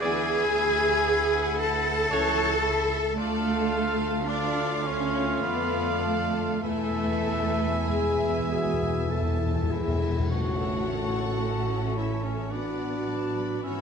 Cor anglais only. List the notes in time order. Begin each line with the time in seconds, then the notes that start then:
0.01 E4
2.12 F#4
2.64 E4
3.18 F4
4.29 F4
6.64 E4
10.30 C#5
11.44 C#5
12.52 D5
13.63 E5